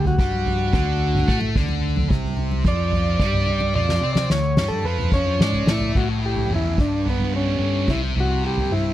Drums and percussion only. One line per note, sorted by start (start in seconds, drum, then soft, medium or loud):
0.05 floor tom medium
0.18 kick medium
0.18 low conga medium
0.31 high conga medium
0.46 floor tom medium
0.73 kick loud
0.73 floor tom medium
1.15 floor tom medium
1.15 mid tom medium
1.28 kick loud
1.41 high conga medium
1.56 kick loud
1.56 floor tom medium
1.68 high conga medium
1.96 floor tom medium
1.96 high conga medium
2.10 kick loud
2.25 floor tom medium
2.37 low conga medium
2.51 high conga medium
2.65 kick loud
2.65 floor tom medium
2.92 floor tom medium
3.20 kick loud
3.33 floor tom medium
3.33 mid tom medium
3.46 low conga medium
3.60 high conga medium
3.75 high tom medium
3.89 snare medium
4.15 snare medium
4.15 high conga medium
4.30 snare medium
4.57 snare medium
4.57 high conga medium
4.57 low conga medium
4.70 mid tom medium
4.70 high conga medium
4.98 mid tom medium
5.12 kick medium
5.26 high conga medium
5.39 snare medium
5.39 high conga medium
5.52 floor tom medium
5.52 high conga medium
5.66 snare loud
5.66 low conga medium
5.80 floor tom medium
5.80 low conga medium
5.95 kick loud
5.95 floor tom medium
5.95 crash medium
6.36 floor tom medium
6.36 high conga medium
6.51 mid tom medium
6.78 kick medium
6.78 floor tom medium
6.78 low conga medium
7.06 floor tom medium
7.20 floor tom medium
7.87 kick medium
7.87 floor tom medium
7.87 low conga medium
8.16 floor tom medium
8.57 floor tom medium
8.71 mid tom medium